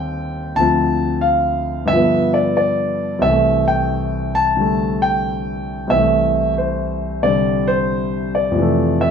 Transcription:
Already playing: D#2 D3 D#3 G3 C4 G5
0.55 D2 D3 F3 A5
0.60 C4
1.21 F5
1.85 G2 D3 E5
1.92 F3 B3
2.34 D5
2.57 D5
3.19 C2 C3 E5
3.26 E3 A3
3.68 G5
4.35 A5
4.57 D3 G3 A3
5.02 G5
5.87 C2 C3 E5
5.94 E3 A3
6.58 C5
7.23 C3 D3 G3 D5
7.67 C5
8.35 D5
8.51 F2 C3
8.58 E3 A3
9.01 E5

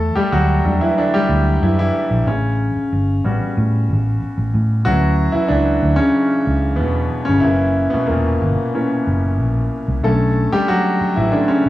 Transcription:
Already playing: A3 A4
0.15 G3 G4, muted fingered electric bass stroke
0.32 D2 F#3 F#4
0.65 E2 G3 D4 F#4
0.81 E3 E4
0.98 D3 D4
1.14 G3 G4
1.29 D2
1.62 F#2 E3 E4
1.79 E3 E4
2.11 A#1
2.27 A1 C#3 C#4
2.76 muted fingered electric bass stroke
2.92 G1
3.24 A1 G3 B3 C#4 F#4
3.57 A2
3.89 A1
4.22 muted fingered electric bass stroke
4.37 A1
4.54 A2
4.85 D2 E3 F#3 C#4 F#4
5.32 E3 E4, muted fingered electric bass stroke
5.48 C#2 E3 D4
5.83 D2
5.96 C#3 C#4
6.47 C#2
6.76 E2 B3
6.80 B2
7.25 G1 C#4
7.29 C#3
7.40 F#1 E3 A#3 C#4 E4
7.90 B2 B3, muted fingered electric bass stroke
8.06 E1 A#2 A#3
8.42 G1
8.74 E3 A#3 C#4
9.07 F#1
9.40 A#1
9.88 C2
10.03 B1 D3 A3 C#4 A4
10.52 G3 G4, muted fingered electric bass stroke
10.68 F#3 F#4
11.01 muted fingered electric bass stroke
11.16 A1 E3 E4
11.32 D3 A3 C#4 D4
11.48 C#3 C#4
11.66 B1

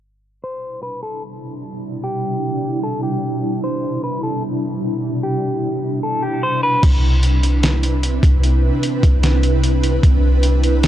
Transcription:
0.43 B2 C3 G3 D4 E4 C5
0.83 B4
1.03 A4
2.04 G4
2.83 A4
3.03 G4
3.64 C5
4.04 B4
4.23 A4
5.23 G4
6.03 A4
6.22 G4
6.43 C5
6.63 B4
6.83 C2 C3 C4 D4 E4 B4, kick, closed hi-hat, crash
7.23 closed hi-hat
7.43 closed hi-hat
7.63 snare, closed hi-hat
7.83 closed hi-hat
8.03 closed hi-hat
8.23 C2, kick, closed hi-hat
8.44 closed hi-hat
8.83 closed hi-hat
9.03 C2, kick, closed hi-hat
9.23 snare, closed hi-hat
9.43 closed hi-hat
9.64 closed hi-hat
9.84 closed hi-hat
10.03 C2, kick, closed hi-hat
10.43 closed hi-hat
10.64 closed hi-hat
10.83 snare, closed hi-hat

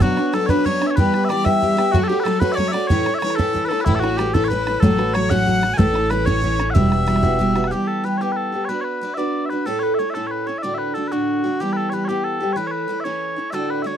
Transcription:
0.00 B2 F#3 B3 C#4 D4 F#4, bodhran
0.17 B3 C#4 D4, bodhran
0.33 F#3 B3 C#4 D4 A4, bodhran
0.46 B3 C#4 D4 B4 C#5, bodhran
0.51 B2 F#3
0.65 F#3 B3 C#4 D4 C#5, bodhran
0.81 B3 C#4 D4, bodhran
0.87 C#5 E5
0.95 E3 G3 B3 G4 B4, bodhran
1.13 G3 B3 G4, bodhran
1.25 E5
1.29 E3 G3 B3 G4 D5, bodhran
1.44 E3 G3 B3 G4 E5, bodhran
1.61 E3 G3 B3 G4, bodhran
1.77 G3 B3 G4, bodhran
1.92 F#3 A3 C#4 F#4, bodhran
2.04 A4
2.08 C#4 F#4 G4
2.12 A3
2.20 A4 B4
2.25 F#3 A3 C#4 F#4 A4, bodhran
2.40 F#3 A3 C#4 F#4 B4, bodhran
2.52 C#5 D5 E5
2.57 F#3 A3 C#4 F#4 C#5, bodhran
2.68 D5 E5
2.73 A3 C#4 F#4 D5, bodhran
2.87 A2 E3 C#4 C#5, bodhran
2.91 A3 E4
3.06 A3 C#4 E4, bodhran
3.14 E5
3.19 E3 C#5, bodhran
3.23 A3 C#4 E4 C#5
3.30 bodhran
3.35 A3 C#4 E4 A4
3.39 A2 E3, bodhran
3.53 E3 A3 C#4 E4, bodhran
3.65 A4 B4
3.70 A3 C#4 E4 A4, bodhran
3.80 B4, bodhran
3.85 A1 A2 E3 A3 C#4 E4, bodhran
3.95 A4
4.00 C#4 E4 F#4
4.04 A3 F#4, bodhran
4.17 E3 A3 C#4 E4 G4, bodhran
4.34 A2 E3 A3 C#4 E4 A4, bodhran
4.44 B4 C#5
4.50 E3 A3 C#4 E4 B4, bodhran
4.67 A3 C#4 E4, bodhran
4.80 A1 A2 F#3 A3 C#4 A4, bodhran
4.84 F#4
4.98 A3 C#4 F#4 B4, bodhran
5.13 F#3 A3 C#4 F#4 C#5, bodhran
5.30 A2 F#3 A3 C#4 F#4 F#5, bodhran
5.46 F#3 A3 C#4 F#4, bodhran
5.62 A3 C#4 F#4, bodhran
5.74 G#5
5.78 A1 A2 E3 A3 C#4 E4 A4, bodhran
5.93 A3 C#4 E4, bodhran
6.10 E3 A3 C#4 E4 B4, bodhran
6.25 A2 E3 A3 C#4 E4 C#5, bodhran
6.41 E3 A3 C#4 E4, bodhran
6.58 A3 C#4 E4, bodhran
6.70 E5 F#5
6.75 E1 E3 G3 B3 F#4 E5, bodhran
6.90 G3 B3 F#4, bodhran
7.06 E3 G3 B3 F#4, bodhran
7.16 bodhran
7.23 E3 G3 B3 F#4, bodhran
7.39 E3 G3 B3 F#4, bodhran
7.55 G3 B3 F#4, bodhran
7.64 F#5, bodhran
7.71 E3 G3 B3 G4
7.87 A4
8.04 E3 G3 B3 G4 B4
8.17 G4 C#5
8.22 E3 G3 B3
8.32 B4
8.36 A4
8.52 G3 B3 G4
8.65 B4 C#5
8.69 B3 D4 F#4 B4
8.81 B4 C#5
9.01 B3 D4 F#4 B4
9.14 F#4 B4 D5 E5
9.19 B3 D4
9.45 E5
9.49 D4 F#4 B4
9.66 A2 A3 C#4 E4 A4
9.79 B4 C#5
9.94 E5
9.99 A3 C#4 E4 A4 C#5
10.10 A4 E5
10.15 A2 A3 C#4 E4 A4
10.27 B4 C#5
10.47 C#4 E4 A4 C#5
10.58 E5
10.62 D2 A2 D3 A3 D4 F#4 D5
10.74 B4 E5
10.94 D3 A3 D4 F#4 A4
11.08 A3 F#4 B4
11.12 D2 A2 D3 D4 F#4
11.44 D3 A3 D4 F#4
11.60 E3 G3 B3 G4
11.73 A4 B4
11.89 E3 G3 B4 C#5
11.94 B3 G4
12.05 G4 C#5
12.09 E3 G3 B3 G4
12.24 A4
12.40 G3 B3 G4
12.53 E3 B4 C#5
12.57 A3 C#4 E4
12.67 C#5
12.71 B4
12.88 E3 A3 C#4 E4
13.00 C#5 E5
13.05 E3 A3 C#4 E4
13.36 A3 C#4 E4
13.50 D2 A2 D3 A3 D4 F#4 A4 E5
13.70 B4
13.82 D3 A3 E5
13.87 D4 F#4 C#5

